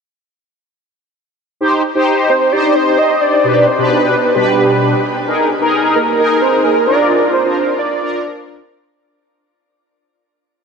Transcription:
1.61 1.83 D#4 medium
1.61 1.83 G4 medium
1.61 1.83 C5 loud
1.95 2.32 D#4 medium
1.95 2.32 G4 medium
1.95 2.32 C5 loud
2.29 2.54 C5 loud
2.52 3.11 D#4 medium
2.52 3.11 G4 medium
2.52 3.11 C5 medium
2.52 2.77 D5 loud
2.75 3.00 C5 loud
2.98 3.20 D#5 loud
3.21 3.68 D5 loud
3.44 3.66 B2 medium
3.44 3.66 D4 medium
3.44 3.66 G4 medium
3.44 3.66 B4 medium
3.67 3.91 C5 loud
3.78 4.15 B2 medium
3.78 4.15 D4 medium
3.78 4.15 G4 medium
3.78 4.15 B4 medium
3.90 4.12 B4 medium
4.13 4.34 B4 medium
4.35 4.94 B2 medium
4.35 4.94 D4 medium
4.35 5.00 G4 medium
4.35 4.94 G4 medium
4.35 4.94 B4 medium
5.27 5.49 D#4 medium
5.27 5.49 G#4 medium
5.27 5.49 A#4 medium
5.61 5.98 D#4 medium
5.61 5.98 G#4 medium
5.61 5.98 A#4 loud
5.96 6.43 A#4 loud
6.19 6.77 D#4 medium
6.19 6.77 G#4 medium
6.19 6.77 A#4 medium
6.42 6.66 C5 loud
6.64 6.87 A#4 medium
6.87 7.33 D4 medium
6.87 7.33 F4 medium
6.87 7.33 A#4 medium
6.87 7.30 D5 loud
7.33 7.76 C5 loud
7.45 7.81 D4 medium
7.45 7.81 F4 medium
7.45 7.81 A#4 medium
7.79 8.67 D5 loud
8.02 8.60 D4 medium
8.02 8.60 F4 medium
8.02 8.60 A#4 medium

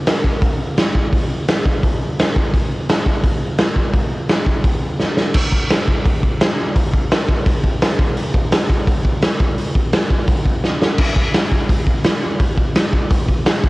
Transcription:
0.07 snare loud
0.07 open hi-hat medium
0.24 kick medium
0.42 kick loud
0.42 open hi-hat medium
0.77 snare loud
0.77 open hi-hat medium
0.95 kick medium
1.13 kick loud
1.13 open hi-hat medium
1.48 snare loud
1.48 open hi-hat medium
1.65 kick medium
1.83 kick loud
1.83 open hi-hat medium
2.19 snare loud
2.19 open hi-hat medium
2.36 kick medium
2.54 kick loud
2.54 open hi-hat medium
2.89 snare loud
2.89 open hi-hat medium
3.06 kick medium
3.24 kick loud
3.24 open hi-hat medium
3.58 snare loud
3.58 open hi-hat medium
3.76 kick medium
3.93 kick medium
3.93 open hi-hat soft
4.29 snare loud
4.29 open hi-hat medium
4.46 kick medium
4.64 kick loud
4.64 open hi-hat medium
4.99 snare medium
5.17 snare medium
5.34 kick loud
5.34 crash loud
5.52 kick medium
5.70 snare loud
5.70 open hi-hat medium
5.88 kick medium
6.05 kick loud
6.05 open hi-hat medium
6.23 kick medium
6.40 snare loud
6.40 open hi-hat medium
6.76 kick loud
6.76 open hi-hat medium
6.93 kick loud
7.11 snare loud
7.11 open hi-hat medium
7.29 kick medium
7.46 kick loud
7.46 open hi-hat medium
7.64 kick medium
7.82 snare loud
7.82 open hi-hat medium
7.99 kick loud
8.17 open hi-hat medium
8.34 kick loud
8.52 snare loud
8.52 open hi-hat medium
8.70 kick medium
8.87 kick loud
8.87 open hi-hat medium
9.05 kick medium
9.22 snare loud
9.22 open hi-hat medium
9.40 kick loud
9.58 open hi-hat medium
9.75 kick loud
9.93 snare loud
9.93 open hi-hat medium
10.11 kick loud
10.27 kick loud
10.27 open hi-hat medium
10.46 kick medium
10.64 snare medium
10.82 snare medium
10.98 kick loud
10.98 crash loud
11.16 kick loud
11.34 snare loud
11.34 open hi-hat medium
11.52 kick medium
11.69 kick loud
11.69 open hi-hat medium
11.87 kick medium
12.04 snare loud
12.04 open hi-hat medium
12.40 kick loud
12.40 open hi-hat medium
12.57 kick medium
12.75 snare loud
12.75 open hi-hat medium
12.93 kick medium
13.10 kick loud
13.10 open hi-hat medium
13.29 kick medium
13.46 snare loud
13.46 open hi-hat medium
13.64 kick loud

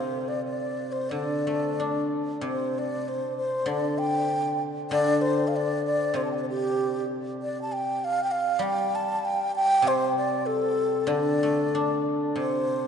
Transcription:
0.00 1.12 C3 soft
0.00 0.46 D3 medium
0.00 0.29 C5 medium
0.28 0.45 D5 medium
0.45 0.94 D5 medium
0.92 1.11 C5 medium
1.09 3.06 D3 soft
1.09 2.10 D5 medium
1.47 2.76 A3 soft
1.80 3.07 D4 soft
2.41 3.68 C3 medium
2.46 2.80 C5 medium
2.78 3.10 D5 medium
3.08 3.37 C5 medium
3.37 3.70 C5 medium
3.66 4.90 D3 medium
3.66 4.00 D5 medium
3.98 4.61 G5 medium
4.90 6.76 D3 medium
4.90 5.23 D5 loud
5.21 5.49 C5 medium
5.47 5.58 F5 medium
5.56 5.84 D5 medium
5.85 6.17 D5 loud
6.14 7.99 C3 medium
6.14 6.24 C5 medium
6.25 6.31 A5 soft
6.31 6.33 G5 soft
6.36 6.42 D5 medium
6.42 6.44 C5 medium
6.49 7.05 G4 medium
7.42 7.61 D5 medium
7.62 7.74 A5 medium
7.72 8.06 G5 medium
8.04 8.23 F5 loud
8.24 8.33 G5 medium
8.31 8.64 F5 medium
8.59 10.45 G3 medium
8.59 8.97 G5 loud
8.95 9.26 A5 medium
9.25 9.55 G5 loud
9.56 9.89 G5 loud
9.82 11.08 C3 medium
9.87 10.17 C5 loud
10.17 10.47 D5 medium
10.46 11.09 A4 medium
11.07 12.87 D3 medium
11.07 12.04 D5 medium
11.43 12.69 A3 soft
11.75 12.87 D4 medium
12.36 12.87 C3 soft
12.36 12.87 C5 medium

